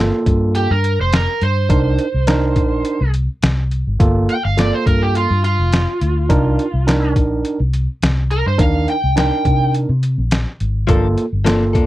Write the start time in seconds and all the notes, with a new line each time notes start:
Already playing: G1 A#3 F4 A4
0.26 G2, kick, closed hi-hat
0.55 G4, closed hi-hat
0.71 G2 A#4
0.84 closed hi-hat
1.00 F1 C5
1.13 A#4, snare, closed hi-hat
1.41 G2 C5, closed hi-hat
1.69 C2 D4 D#4 A#4, kick, closed hi-hat
1.99 closed hi-hat
2.14 C2
2.27 D4 D#4 A#4, snare, closed hi-hat
2.56 A#1, kick, closed hi-hat
2.85 closed hi-hat
3.01 C2
3.14 closed hi-hat
3.43 C2, snare, closed hi-hat
3.71 closed hi-hat
3.87 G#1
4.00 G1 A#3 F4 A4, kick, closed hi-hat
4.29 G5, closed hi-hat
4.45 G1 F5
4.57 A#3 F4 A4 D5, snare, closed hi-hat
4.74 C5
4.86 G2 A#4, kick, closed hi-hat
5.03 G4
5.15 F4, closed hi-hat
5.31 G2
5.44 F4, closed hi-hat
5.59 F1
5.73 snare, closed hi-hat
6.01 D2, closed hi-hat
6.29 C2 D4 D#4 A#4, kick, closed hi-hat
6.59 closed hi-hat
6.74 C2
6.87 D4 D#4 A#4, snare, closed hi-hat
7.16 A#1, kick, closed hi-hat
7.45 closed hi-hat
7.60 C2
7.73 closed hi-hat
8.02 C2, snare, closed hi-hat
8.31 A#4, closed hi-hat
8.46 G2 C5
8.58 D#2 D4 D#4 A#4 F5, kick, closed hi-hat
8.88 G5, closed hi-hat
9.04 C2
9.16 D4 D#4 A#4 G5, snare, closed hi-hat
9.45 C3, kick, closed hi-hat
9.74 closed hi-hat
9.89 C3
10.03 closed hi-hat
10.18 A#1
10.31 snare, closed hi-hat
10.60 G#1, closed hi-hat
10.87 G1 F3 A#3 D4 F4 A4, kick, closed hi-hat
11.18 closed hi-hat
11.33 G1
11.45 F3 A#3 D4 F4 A4, snare, closed hi-hat
11.73 F1 A#3 D4 A4, kick, closed hi-hat